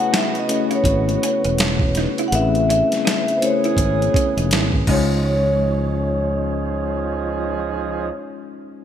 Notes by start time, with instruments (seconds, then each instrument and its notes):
Already playing: horn section C#3 B3 F#4, tonewheel organ C#3 B3 B4, tine electric piano A3 C#4 E4 G#4 B4 C#5, vibraphone F#5
0.13 hollow-body jazz guitar D#4, vibraphone E5, snare, closed hi-hat
0.35 vibraphone D#5, closed hi-hat
0.49 tine electric piano A3 C#4 E4 G#4 C#5, muted hollow-body jazz guitar stroke, closed hi-hat
0.71 hollow-body jazz guitar E4, closed hi-hat
0.75 vibraphone C#5
0.84 fretless electric bass G#1, muted hollow-body jazz guitar stroke, kick, closed hi-hat
1.09 closed hi-hat
1.23 hollow-body jazz guitar C#4, closed hi-hat
1.44 fretless electric bass E1, hollow-body jazz guitar C#4, closed hi-hat
1.58 muted hollow-body jazz guitar stroke, snare, closed hi-hat
1.79 kick
1.95 hollow-body jazz guitar D#4, snare, closed hi-hat
2.18 hollow-body jazz guitar E4, closed hi-hat
2.28 tine electric piano A3 C4, vibraphone F#5
2.32 fretless electric bass A1, tine electric piano E4 G#4 B4, vibraphone E5, closed hi-hat
2.39 tine electric piano C#4
2.55 closed hi-hat
2.70 hollow-body jazz guitar C#4, vibraphone E5, closed hi-hat
2.92 snare, closed hi-hat
3.05 hollow-body jazz guitar D#4, snare, closed hi-hat
3.28 closed hi-hat
3.38 horn section E3 C#4 G#4, tine electric piano A3, vibraphone C5
3.42 tine electric piano C#4 E4 G#4 A#4, vibraphone C#5, muted hollow-body jazz guitar stroke, closed hi-hat
3.50 tine electric piano B4
3.64 hollow-body jazz guitar E4, closed hi-hat
3.77 fretless electric bass G#1, muted hollow-body jazz guitar stroke, kick, closed hi-hat
4.02 closed hi-hat
4.14 hollow-body jazz guitar C#4, muted fretless electric bass stroke, kick, closed hi-hat
4.37 fretless electric bass E1, hollow-body jazz guitar D#4, closed hi-hat
4.51 fretless electric bass G#1, hollow-body jazz guitar E4, snare, closed hi-hat
4.72 kick
4.86 fretless electric bass C#2, horn section F3 D#4 G#4, tonewheel organ F3 D#4 C#5, tine electric piano G#3 C#4 D#4, hollow-body jazz guitar C#4, kick, crash
4.91 tine electric piano F4 C#5, vibraphone C#5